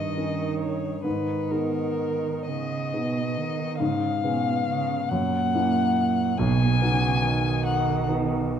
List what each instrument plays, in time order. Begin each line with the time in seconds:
Already playing: grand piano G2, cello D#3, violin D#5
0.17 grand piano C#4 D#4 A#4
0.59 violin C#5
1.04 grand piano G#2, cello D#3, violin B4
1.50 grand piano B3 D#4 G#4, violin A#4
2.47 cello C#3, violin D#5
2.93 cello B2, grand piano B3 D#4 G#4
3.37 cello D#3
3.79 grand piano G#2, cello C#3, violin F5
4.23 cello B2, grand piano B3 C#4 G#4
4.67 cello C#3
5.09 grand piano F#2, cello A#2, violin F#5
5.55 grand piano A#3 C#4 E4
6.38 grand piano B1, cello B2, violin G#5
6.80 cello C#3, grand piano B3 D#4 F#4
7.22 cello D#3
7.65 violin F#5
8.08 grand piano B3 D#4 F#4